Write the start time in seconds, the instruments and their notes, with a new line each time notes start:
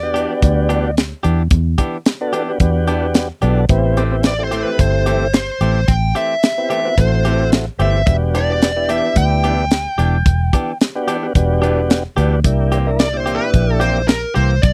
Already playing: fingered electric bass E2, lead electric guitar D5
0.03 tonewheel organ B3 D4 F#4 G4
0.14 clean electric guitar E3 B3 D4 G4, closed hi-hat
0.42 fingered electric bass D2, kick, closed hi-hat
0.69 clean electric guitar E3 B3 D4 G4, closed hi-hat
0.97 snare, closed hi-hat
1.23 fingered electric bass E2, clean electric guitar E3 B3 D4 G4, closed hi-hat
1.51 fingered electric bass E2, kick, closed hi-hat
1.78 clean electric guitar E3 B3 D4 G4, kick, closed hi-hat
2.06 snare, closed hi-hat
2.21 tonewheel organ B3 D4 F#4 A4
2.33 clean electric guitar E3 B3 D4 G4, closed hi-hat
2.48 tonewheel organ B3 D4 F#4 G4
2.60 fingered electric bass E2, tonewheel organ B3 D4 F#4 G4, kick, closed hi-hat
2.88 clean electric guitar E3 B3 D4 G4, closed hi-hat
3.14 snare, closed hi-hat
3.42 fingered electric bass B1, clean electric guitar E3 B3 D4 G4, tonewheel organ B3 D4 F#4 A4, closed hi-hat
3.69 fingered electric bass A1, tonewheel organ B3 C4 E4 G4, kick, closed hi-hat
3.97 clean electric guitar E3 A3 C4 G4, closed hi-hat
4.11 tonewheel organ B3 C4 E4 G4
4.23 lead electric guitar D5, snare, closed hi-hat
4.38 tonewheel organ A3 C4 E4 G4
4.44 lead electric guitar C5
4.51 clean electric guitar E3 A3 C4 G4, closed hi-hat
4.63 lead electric guitar B4
4.79 fingered electric bass G1, lead electric guitar C5, kick, closed hi-hat
5.06 clean electric guitar E3 A3 C4 G4, closed hi-hat
5.34 lead electric guitar C5, snare, closed hi-hat
5.61 fingered electric bass A1, clean electric guitar E3 A3 C4 G4, closed hi-hat
5.88 fingered electric bass A1, lead electric guitar G5, kick, closed hi-hat
6.15 clean electric guitar E3 A3 C4 G4, lead electric guitar E5, closed hi-hat
6.43 snare, closed hi-hat
6.58 tonewheel organ B3 C4 E4 G4
6.70 clean electric guitar E3 A3 C4 G4, lead electric guitar E5, closed hi-hat
6.85 tonewheel organ B3 C4 E4 F#4
6.98 fingered electric bass A1, tonewheel organ A3 C4 E4 F#4, lead electric guitar C5, kick, closed hi-hat
7.25 clean electric guitar E3 A3 C4 G4, closed hi-hat
7.52 snare, closed hi-hat
7.78 fingered electric bass G1, clean electric guitar E3 A3 C4 G4, tonewheel organ B3 C4 E4 G4, lead electric guitar E5, closed hi-hat
8.06 fingered electric bass E1, tonewheel organ B3 D4 F#4 G4, lead electric guitar E5, kick, closed hi-hat
8.35 clean electric guitar E3 B3 D4 G4, lead electric guitar D5, closed hi-hat
8.50 tonewheel organ B3 D4 F#4 G4
8.62 snare, closed hi-hat
8.76 tonewheel organ B3 D4 E4 G4
8.89 clean electric guitar E3 B3 D4 G4, lead electric guitar E5, closed hi-hat
9.16 fingered electric bass D2, lead electric guitar G5, kick, closed hi-hat
9.44 clean electric guitar E3 B3 D4 G4, closed hi-hat
9.71 snare, closed hi-hat
9.98 fingered electric bass E1, clean electric guitar E3 B3 D4 G4, closed hi-hat
10.26 fingered electric bass E1, kick, closed hi-hat
10.53 clean electric guitar E3 B3 D4 G4, kick, closed hi-hat
10.81 snare, closed hi-hat
10.95 tonewheel organ B3 D4 F#4 G4
11.08 clean electric guitar E3 B3 D4 G4, closed hi-hat
11.23 tonewheel organ B3 D4 F#4 G4
11.35 fingered electric bass E1, tonewheel organ B3 D4 F#4 G4, kick, closed hi-hat
11.62 clean electric guitar E3 B3 D4 G4, closed hi-hat
11.90 snare, closed hi-hat
12.16 fingered electric bass D2, clean electric guitar E3 B3 D4 G4, tonewheel organ B3 D4 F#4 G4, closed hi-hat
12.44 fingered electric bass C2, tonewheel organ A#3 D4 E4 G4, kick, closed hi-hat
12.72 clean electric guitar E3 A#3 C4 G4, closed hi-hat
12.86 tonewheel organ A#3 D4 E4 A#4
12.99 lead electric guitar D5, snare, closed hi-hat
13.13 tonewheel organ A#2 D4 E4 G4
13.17 lead electric guitar C5
13.26 clean electric guitar E3 A#3 C4 G4, closed hi-hat
13.35 lead electric guitar B4
13.54 fingered electric bass A#1, kick, closed hi-hat
13.80 clean electric guitar E3 A#3 C4 G4, lead electric guitar C5, closed hi-hat
14.08 lead electric guitar A#4, snare, closed hi-hat
14.34 fingered electric bass C2, clean electric guitar E3 A#3 C4 G4, lead electric guitar C5, closed hi-hat
14.62 fingered electric bass B1, lead electric guitar D5, kick, closed hi-hat